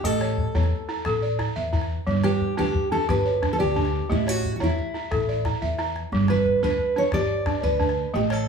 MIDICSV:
0, 0, Header, 1, 5, 480
1, 0, Start_track
1, 0, Tempo, 337268
1, 68, Time_signature, 12, 3, 24, 8
1, 12072, End_track
2, 0, Start_track
2, 0, Title_t, "Steel-string acoustic guitar"
2, 0, Program_c, 0, 25
2, 68, Note_on_c, 0, 69, 69
2, 1511, Note_off_c, 0, 69, 0
2, 3189, Note_on_c, 0, 67, 84
2, 3662, Note_off_c, 0, 67, 0
2, 3679, Note_on_c, 0, 67, 85
2, 4150, Note_off_c, 0, 67, 0
2, 4155, Note_on_c, 0, 69, 88
2, 4403, Note_off_c, 0, 69, 0
2, 4411, Note_on_c, 0, 71, 90
2, 5016, Note_off_c, 0, 71, 0
2, 5022, Note_on_c, 0, 69, 66
2, 5116, Note_off_c, 0, 69, 0
2, 5122, Note_on_c, 0, 67, 81
2, 5855, Note_off_c, 0, 67, 0
2, 5861, Note_on_c, 0, 64, 76
2, 6103, Note_off_c, 0, 64, 0
2, 6103, Note_on_c, 0, 66, 82
2, 6470, Note_off_c, 0, 66, 0
2, 6487, Note_on_c, 0, 66, 52
2, 6572, Note_off_c, 0, 66, 0
2, 6597, Note_on_c, 0, 64, 70
2, 7960, Note_off_c, 0, 64, 0
2, 8966, Note_on_c, 0, 71, 82
2, 9408, Note_off_c, 0, 71, 0
2, 9449, Note_on_c, 0, 71, 83
2, 9931, Note_off_c, 0, 71, 0
2, 9937, Note_on_c, 0, 73, 84
2, 10149, Note_off_c, 0, 73, 0
2, 10161, Note_on_c, 0, 74, 90
2, 10861, Note_off_c, 0, 74, 0
2, 10867, Note_on_c, 0, 71, 77
2, 11537, Note_off_c, 0, 71, 0
2, 11606, Note_on_c, 0, 67, 70
2, 11677, Note_off_c, 0, 67, 0
2, 11843, Note_on_c, 0, 69, 80
2, 12072, Note_off_c, 0, 69, 0
2, 12072, End_track
3, 0, Start_track
3, 0, Title_t, "Balafon"
3, 0, Program_c, 1, 12
3, 59, Note_on_c, 1, 57, 85
3, 299, Note_on_c, 1, 73, 65
3, 545, Note_off_c, 1, 57, 0
3, 766, Note_off_c, 1, 73, 0
3, 781, Note_on_c, 1, 64, 68
3, 783, Note_on_c, 1, 73, 57
3, 1244, Note_off_c, 1, 64, 0
3, 1261, Note_on_c, 1, 64, 73
3, 1507, Note_on_c, 1, 69, 65
3, 1508, Note_off_c, 1, 73, 0
3, 1739, Note_on_c, 1, 74, 56
3, 1747, Note_off_c, 1, 64, 0
3, 1977, Note_on_c, 1, 64, 70
3, 2218, Note_on_c, 1, 76, 65
3, 2230, Note_off_c, 1, 69, 0
3, 2442, Note_off_c, 1, 64, 0
3, 2459, Note_on_c, 1, 64, 76
3, 2467, Note_off_c, 1, 74, 0
3, 2940, Note_on_c, 1, 55, 81
3, 2947, Note_off_c, 1, 64, 0
3, 2947, Note_off_c, 1, 76, 0
3, 3186, Note_on_c, 1, 71, 58
3, 3428, Note_off_c, 1, 55, 0
3, 3647, Note_off_c, 1, 71, 0
3, 3663, Note_on_c, 1, 62, 77
3, 3664, Note_on_c, 1, 71, 57
3, 4134, Note_off_c, 1, 62, 0
3, 4151, Note_on_c, 1, 62, 66
3, 4391, Note_off_c, 1, 71, 0
3, 4393, Note_on_c, 1, 67, 72
3, 4631, Note_on_c, 1, 73, 56
3, 4634, Note_off_c, 1, 62, 0
3, 4873, Note_on_c, 1, 62, 68
3, 5105, Note_on_c, 1, 74, 70
3, 5116, Note_off_c, 1, 67, 0
3, 5336, Note_off_c, 1, 62, 0
3, 5354, Note_off_c, 1, 73, 0
3, 5354, Note_on_c, 1, 62, 78
3, 5829, Note_on_c, 1, 57, 86
3, 5832, Note_off_c, 1, 74, 0
3, 5836, Note_off_c, 1, 62, 0
3, 6072, Note_on_c, 1, 73, 63
3, 6314, Note_off_c, 1, 57, 0
3, 6535, Note_off_c, 1, 73, 0
3, 6550, Note_on_c, 1, 64, 77
3, 6552, Note_on_c, 1, 73, 58
3, 7018, Note_off_c, 1, 64, 0
3, 7035, Note_on_c, 1, 64, 64
3, 7274, Note_on_c, 1, 69, 65
3, 7275, Note_off_c, 1, 73, 0
3, 7517, Note_off_c, 1, 64, 0
3, 7523, Note_on_c, 1, 74, 59
3, 7764, Note_on_c, 1, 64, 70
3, 7996, Note_off_c, 1, 69, 0
3, 7997, Note_on_c, 1, 76, 66
3, 8220, Note_off_c, 1, 64, 0
3, 8237, Note_on_c, 1, 64, 74
3, 8240, Note_off_c, 1, 74, 0
3, 8717, Note_off_c, 1, 64, 0
3, 8717, Note_off_c, 1, 76, 0
3, 8720, Note_on_c, 1, 55, 80
3, 8960, Note_on_c, 1, 71, 62
3, 9198, Note_off_c, 1, 55, 0
3, 9418, Note_off_c, 1, 71, 0
3, 9433, Note_on_c, 1, 62, 65
3, 9435, Note_on_c, 1, 71, 58
3, 9891, Note_off_c, 1, 62, 0
3, 9908, Note_on_c, 1, 62, 66
3, 10154, Note_off_c, 1, 71, 0
3, 10158, Note_on_c, 1, 67, 75
3, 10391, Note_off_c, 1, 62, 0
3, 10623, Note_on_c, 1, 62, 69
3, 10862, Note_on_c, 1, 74, 65
3, 10875, Note_off_c, 1, 67, 0
3, 11080, Note_off_c, 1, 62, 0
3, 11097, Note_on_c, 1, 62, 73
3, 11581, Note_on_c, 1, 57, 86
3, 11583, Note_off_c, 1, 62, 0
3, 11585, Note_off_c, 1, 74, 0
3, 11817, Note_on_c, 1, 73, 61
3, 12064, Note_off_c, 1, 57, 0
3, 12072, Note_off_c, 1, 73, 0
3, 12072, End_track
4, 0, Start_track
4, 0, Title_t, "Upright bass"
4, 0, Program_c, 2, 32
4, 65, Note_on_c, 2, 33, 85
4, 637, Note_off_c, 2, 33, 0
4, 779, Note_on_c, 2, 40, 79
4, 973, Note_off_c, 2, 40, 0
4, 1508, Note_on_c, 2, 33, 89
4, 2079, Note_off_c, 2, 33, 0
4, 2227, Note_on_c, 2, 40, 89
4, 2799, Note_off_c, 2, 40, 0
4, 2950, Note_on_c, 2, 31, 90
4, 3521, Note_off_c, 2, 31, 0
4, 3678, Note_on_c, 2, 38, 86
4, 3867, Note_off_c, 2, 38, 0
4, 4396, Note_on_c, 2, 31, 80
4, 4965, Note_off_c, 2, 31, 0
4, 5116, Note_on_c, 2, 38, 92
4, 5685, Note_off_c, 2, 38, 0
4, 5844, Note_on_c, 2, 33, 84
4, 6411, Note_off_c, 2, 33, 0
4, 6562, Note_on_c, 2, 40, 78
4, 6750, Note_off_c, 2, 40, 0
4, 7284, Note_on_c, 2, 33, 81
4, 7850, Note_off_c, 2, 33, 0
4, 8004, Note_on_c, 2, 40, 84
4, 8570, Note_off_c, 2, 40, 0
4, 8712, Note_on_c, 2, 31, 88
4, 9282, Note_off_c, 2, 31, 0
4, 9433, Note_on_c, 2, 38, 80
4, 9624, Note_off_c, 2, 38, 0
4, 10151, Note_on_c, 2, 31, 81
4, 10720, Note_off_c, 2, 31, 0
4, 10862, Note_on_c, 2, 38, 94
4, 11433, Note_off_c, 2, 38, 0
4, 11590, Note_on_c, 2, 33, 83
4, 12072, Note_off_c, 2, 33, 0
4, 12072, End_track
5, 0, Start_track
5, 0, Title_t, "Calabash"
5, 48, Note_on_c, 9, 36, 61
5, 191, Note_off_c, 9, 36, 0
5, 298, Note_on_c, 9, 38, 57
5, 441, Note_off_c, 9, 38, 0
5, 539, Note_on_c, 9, 36, 65
5, 682, Note_off_c, 9, 36, 0
5, 903, Note_on_c, 9, 38, 49
5, 1025, Note_on_c, 9, 36, 60
5, 1045, Note_off_c, 9, 38, 0
5, 1167, Note_off_c, 9, 36, 0
5, 1494, Note_on_c, 9, 36, 67
5, 1494, Note_on_c, 9, 38, 71
5, 1636, Note_off_c, 9, 36, 0
5, 1636, Note_off_c, 9, 38, 0
5, 1982, Note_on_c, 9, 36, 55
5, 1982, Note_on_c, 9, 38, 63
5, 2125, Note_off_c, 9, 36, 0
5, 2125, Note_off_c, 9, 38, 0
5, 2464, Note_on_c, 9, 36, 74
5, 2583, Note_on_c, 9, 38, 49
5, 2606, Note_off_c, 9, 36, 0
5, 2725, Note_off_c, 9, 38, 0
5, 2949, Note_on_c, 9, 36, 68
5, 3091, Note_off_c, 9, 36, 0
5, 3182, Note_on_c, 9, 38, 65
5, 3325, Note_off_c, 9, 38, 0
5, 3423, Note_on_c, 9, 36, 72
5, 3565, Note_off_c, 9, 36, 0
5, 3782, Note_on_c, 9, 38, 46
5, 3911, Note_on_c, 9, 36, 68
5, 3925, Note_off_c, 9, 38, 0
5, 4053, Note_off_c, 9, 36, 0
5, 4396, Note_on_c, 9, 36, 66
5, 4396, Note_on_c, 9, 38, 68
5, 4538, Note_off_c, 9, 36, 0
5, 4538, Note_off_c, 9, 38, 0
5, 4880, Note_on_c, 9, 36, 57
5, 4880, Note_on_c, 9, 38, 63
5, 5022, Note_off_c, 9, 36, 0
5, 5022, Note_off_c, 9, 38, 0
5, 5370, Note_on_c, 9, 36, 72
5, 5482, Note_on_c, 9, 38, 53
5, 5512, Note_off_c, 9, 36, 0
5, 5624, Note_off_c, 9, 38, 0
5, 5847, Note_on_c, 9, 36, 65
5, 5978, Note_on_c, 9, 38, 18
5, 5989, Note_off_c, 9, 36, 0
5, 6091, Note_off_c, 9, 38, 0
5, 6091, Note_on_c, 9, 38, 62
5, 6214, Note_off_c, 9, 38, 0
5, 6214, Note_on_c, 9, 38, 22
5, 6330, Note_on_c, 9, 36, 74
5, 6356, Note_off_c, 9, 38, 0
5, 6447, Note_on_c, 9, 38, 20
5, 6473, Note_off_c, 9, 36, 0
5, 6568, Note_off_c, 9, 38, 0
5, 6568, Note_on_c, 9, 38, 20
5, 6684, Note_off_c, 9, 38, 0
5, 6684, Note_on_c, 9, 38, 52
5, 6808, Note_on_c, 9, 36, 65
5, 6827, Note_off_c, 9, 38, 0
5, 6950, Note_off_c, 9, 36, 0
5, 7169, Note_on_c, 9, 38, 17
5, 7281, Note_off_c, 9, 38, 0
5, 7281, Note_on_c, 9, 36, 63
5, 7281, Note_on_c, 9, 38, 67
5, 7400, Note_off_c, 9, 38, 0
5, 7400, Note_on_c, 9, 38, 21
5, 7423, Note_off_c, 9, 36, 0
5, 7543, Note_off_c, 9, 38, 0
5, 7636, Note_on_c, 9, 38, 17
5, 7756, Note_off_c, 9, 38, 0
5, 7756, Note_on_c, 9, 36, 59
5, 7756, Note_on_c, 9, 38, 59
5, 7882, Note_off_c, 9, 38, 0
5, 7882, Note_on_c, 9, 38, 21
5, 7898, Note_off_c, 9, 36, 0
5, 8001, Note_on_c, 9, 36, 41
5, 8024, Note_off_c, 9, 38, 0
5, 8144, Note_off_c, 9, 36, 0
5, 8232, Note_on_c, 9, 38, 43
5, 8375, Note_off_c, 9, 38, 0
5, 8482, Note_on_c, 9, 38, 50
5, 8624, Note_off_c, 9, 38, 0
5, 8717, Note_on_c, 9, 36, 69
5, 8859, Note_off_c, 9, 36, 0
5, 8942, Note_on_c, 9, 38, 59
5, 9084, Note_off_c, 9, 38, 0
5, 9188, Note_on_c, 9, 36, 64
5, 9331, Note_off_c, 9, 36, 0
5, 9541, Note_on_c, 9, 38, 52
5, 9651, Note_on_c, 9, 36, 59
5, 9683, Note_off_c, 9, 38, 0
5, 9793, Note_off_c, 9, 36, 0
5, 10132, Note_on_c, 9, 36, 67
5, 10132, Note_on_c, 9, 38, 65
5, 10274, Note_off_c, 9, 36, 0
5, 10274, Note_off_c, 9, 38, 0
5, 10617, Note_on_c, 9, 36, 56
5, 10617, Note_on_c, 9, 38, 68
5, 10759, Note_off_c, 9, 36, 0
5, 10759, Note_off_c, 9, 38, 0
5, 11104, Note_on_c, 9, 36, 66
5, 11232, Note_on_c, 9, 38, 51
5, 11247, Note_off_c, 9, 36, 0
5, 11375, Note_off_c, 9, 38, 0
5, 11583, Note_on_c, 9, 36, 62
5, 11726, Note_off_c, 9, 36, 0
5, 11816, Note_on_c, 9, 38, 67
5, 11958, Note_off_c, 9, 38, 0
5, 12072, End_track
0, 0, End_of_file